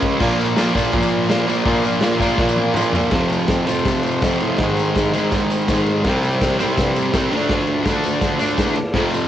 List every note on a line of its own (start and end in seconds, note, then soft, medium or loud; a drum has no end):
0.00 0.19 C#2 loud
0.00 0.20 C#3 medium
0.00 0.21 G#3 loud
0.00 0.21 C#4 medium
0.00 0.22 C#4 loud
0.00 0.21 G#4 medium
0.00 0.21 C#5 medium
0.00 kick medium
0.00 ride medium
0.16 0.38 A#2 loud
0.16 0.56 A#2 loud
0.16 3.07 F4 medium
0.16 3.08 A#4 medium
0.16 3.09 D5 medium
0.16 kick loud
0.16 crash loud
0.22 0.58 F3 loud
0.22 0.59 A#3 loud
0.22 tambourine soft
0.31 tambourine soft
0.40 tambourine medium
0.56 0.74 A#2 loud
0.56 0.74 A#2 medium
0.56 0.76 F3 medium
0.56 0.76 A#3 medium
0.56 snare loud
0.56 open hi-hat medium
0.56 tambourine loud
0.67 tambourine soft
0.74 0.91 A#2 medium
0.74 0.92 A#2 medium
0.74 0.93 F3 loud
0.74 0.94 A#3 medium
0.74 kick medium
0.74 tambourine medium
0.93 1.28 A#2 medium
0.93 1.29 A#2 loud
0.93 1.29 F3 loud
0.93 1.30 A#3 loud
0.93 kick loud
0.93 open hi-hat medium
1.02 tambourine medium
1.29 1.47 A#2 medium
1.29 1.47 A#2 loud
1.29 1.48 F3 medium
1.29 1.49 A#3 medium
1.29 snare loud
1.29 open hi-hat medium
1.29 tambourine loud
1.41 tambourine soft
1.48 1.65 A#2 medium
1.48 1.64 A#2 medium
1.48 1.66 F3 medium
1.48 1.67 A#3 medium
1.48 tambourine medium
1.59 tambourine soft
1.65 2.02 A#2 loud
1.65 1.84 A#2 loud
1.65 2.03 F3 loud
1.65 2.03 A#3 loud
1.65 kick loud
1.65 open hi-hat medium
1.65 tambourine soft
1.76 tambourine soft
1.85 2.02 A#2 medium
1.85 tambourine medium
1.95 tambourine soft
2.01 2.19 A#2 loud
2.01 2.19 A#2 medium
2.01 2.20 F3 medium
2.01 2.21 A#3 loud
2.01 snare loud
2.01 open hi-hat medium
2.01 tambourine loud
2.14 tambourine soft
2.20 2.38 A#2 loud
2.20 2.39 A#2 medium
2.20 2.40 F3 loud
2.20 2.41 A#3 loud
2.20 kick medium
2.20 tambourine medium
2.37 2.74 A#2 loud
2.37 2.75 A#2 medium
2.37 2.76 F3 loud
2.37 kick loud
2.37 snare medium
2.42 2.77 A#3 loud
2.49 tambourine medium
2.56 high tom medium
2.74 2.93 A#2 medium
2.74 2.94 A#2 medium
2.74 2.94 F3 medium
2.74 2.95 A#3 loud
2.74 mid tom loud
2.74 tambourine loud
2.86 tambourine soft
2.93 3.12 A#2 medium
2.93 3.11 A#2 medium
2.93 3.13 F3 medium
2.93 3.13 A#3 medium
2.93 floor tom loud
2.93 tambourine medium
3.05 tambourine soft
3.10 3.66 F2 medium
3.10 3.29 F2 loud
3.10 3.67 C3 loud
3.10 4.55 F4 medium
3.10 4.56 A4 medium
3.10 4.57 C5 medium
3.10 kick loud
3.10 snare loud
3.10 ride loud
3.16 3.65 F3 loud
3.30 3.47 F2 medium
3.30 ride medium
3.30 tambourine medium
3.48 3.65 F2 medium
3.48 kick loud
3.48 snare loud
3.48 ride loud
3.48 tambourine loud
3.67 3.84 F2 medium
3.67 4.23 C3 medium
3.67 4.21 F3 medium
3.67 ride medium
3.67 tambourine medium
3.72 4.20 F2 medium
3.85 4.03 C3 loud
3.85 kick loud
3.85 snare loud
3.85 ride loud
3.85 tambourine medium
4.03 4.21 F2 medium
4.03 ride medium
4.03 tambourine medium
4.21 4.57 F2 medium
4.21 4.39 F2 medium
4.21 4.59 C3 medium
4.21 kick loud
4.21 snare loud
4.21 ride loud
4.21 tambourine loud
4.28 4.61 F3 medium
4.40 4.57 A2 medium
4.40 ride medium
4.40 tambourine soft
4.58 5.12 G#2 medium
4.58 4.92 G#2 loud
4.58 5.14 D#3 loud
4.58 6.03 D#4 medium
4.58 6.03 G#4 medium
4.58 kick loud
4.58 snare loud
4.58 ride loud
4.63 5.12 G#3 medium
4.63 6.05 C5 medium
4.77 ride medium
4.77 tambourine medium
4.96 5.12 G#2 medium
4.96 kick loud
4.96 snare loud
4.96 ride loud
4.96 tambourine loud
5.13 5.31 G#2 medium
5.13 5.69 D#3 medium
5.13 5.68 G#3 medium
5.13 ride medium
5.13 tambourine medium
5.20 5.67 G#2 medium
5.32 5.65 G#2 loud
5.32 kick loud
5.32 snare loud
5.32 ride loud
5.32 tambourine medium
5.50 ride medium
5.50 tambourine medium
5.68 6.01 G#2 medium
5.68 6.04 G#2 medium
5.68 6.04 D#3 medium
5.68 kick loud
5.68 snare loud
5.68 ride loud
5.68 tambourine loud
5.74 6.07 G#3 medium
5.86 ride medium
5.86 tambourine soft
6.04 6.21 C2 loud
6.04 6.58 C3 medium
6.04 6.60 G3 loud
6.04 7.31 E4 medium
6.04 7.31 G4 medium
6.04 kick loud
6.04 snare loud
6.04 ride loud
6.09 6.58 C4 loud
6.09 7.32 C5 medium
6.23 6.40 C2 medium
6.23 ride medium
6.23 tambourine medium
6.41 6.58 C2 medium
6.41 kick loud
6.41 snare loud
6.41 ride loud
6.41 tambourine medium
6.59 6.76 C2 medium
6.59 7.14 G3 medium
6.59 7.13 C4 medium
6.59 ride medium
6.59 tambourine medium
6.65 7.11 C3 medium
6.77 6.94 G2 loud
6.77 kick loud
6.77 snare loud
6.77 ride loud
6.77 tambourine medium
6.96 ride medium
6.96 tambourine medium
7.12 7.30 C2 medium
7.12 7.30 C3 medium
7.12 7.32 G3 medium
7.12 kick loud
7.12 snare loud
7.12 ride loud
7.12 tambourine medium
7.18 7.33 C4 medium
7.31 7.49 D2 medium
7.31 7.82 D3 medium
7.31 7.86 A3 medium
7.31 8.93 F4 medium
7.31 ride medium
7.31 tambourine soft
7.36 7.88 D4 loud
7.36 8.94 A4 medium
7.36 8.95 D5 medium
7.49 7.83 D2 loud
7.49 kick loud
7.49 snare loud
7.49 ride loud
7.67 ride medium
7.83 8.03 D2 medium
7.83 8.38 D3 medium
7.83 8.40 A3 medium
7.83 kick loud
7.83 snare loud
7.83 ride loud
7.87 8.38 D4 medium
7.87 tambourine loud
8.03 8.20 D2 medium
8.03 ride medium
8.03 tambourine medium
8.21 8.55 D2 loud
8.21 kick loud
8.21 snare loud
8.21 ride loud
8.21 tambourine medium
8.39 8.77 A3 medium
8.39 8.75 D4 medium
8.39 ride medium
8.39 tambourine medium
8.44 8.78 D3 medium
8.58 8.91 E2 loud
8.58 kick loud
8.58 snare loud
8.58 ride loud
8.58 tambourine medium
8.76 ride medium
8.94 9.28 F2 medium
8.94 9.11 F2 loud
8.94 9.28 C3 medium
8.94 9.28 F4 medium
8.94 9.28 A4 medium
8.94 kick loud
8.94 snare loud
8.94 crash loud
8.99 9.28 F3 loud
8.99 9.28 C5 medium
9.11 9.28 F2 medium
9.11 ride medium
9.11 tambourine medium